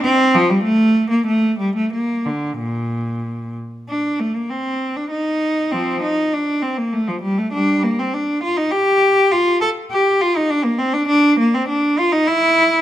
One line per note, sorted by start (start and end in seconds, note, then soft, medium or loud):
0.03 0.33 C4 medium
0.35 0.49 F3 medium
0.50 0.65 G3 medium
0.64 1.10 A3 medium
1.10 1.26 A#3 medium
1.27 1.59 A3 medium
1.59 1.75 G3 medium
1.76 1.92 A3 medium
1.93 2.26 A#3 medium
2.26 2.59 D3 medium
2.59 3.56 A#2 medium
3.89 4.18 D4 medium
4.20 4.35 A3 medium
4.35 4.51 A#3 soft
4.50 4.97 C4 medium
4.97 5.12 D4 medium
5.11 5.70 D#4 medium
5.72 6.00 F3 medium
5.72 6.02 C4 medium
6.02 6.32 D#4 medium
6.33 6.63 D4 medium
6.63 6.78 C4 medium
6.78 6.93 A#3 medium
6.93 7.08 A3 medium
7.08 7.23 F3 medium
7.22 7.37 G3 medium
7.38 7.53 A3 medium
7.52 7.81 G3 medium
7.52 7.83 D4 medium
7.83 7.99 A#3 medium
7.99 8.14 C4 medium
8.14 8.44 D4 medium
8.43 8.58 F4 medium
8.57 8.73 D#4 medium
8.72 9.32 G4 medium
9.32 9.62 F4 medium
9.61 9.69 A4 medium
9.91 10.21 G4 medium
10.21 10.36 F4 medium
10.37 10.51 D#4 medium
10.50 10.65 D4 medium
10.65 10.80 A#3 medium
10.79 10.94 C4 medium
10.94 11.07 D4 medium
11.08 11.38 D4 medium
11.39 11.54 A#3 medium
11.54 11.69 C4 medium
11.69 11.98 D4 medium
11.99 12.13 F4 medium
12.12 12.28 D#4 medium
12.27 12.81 E4 medium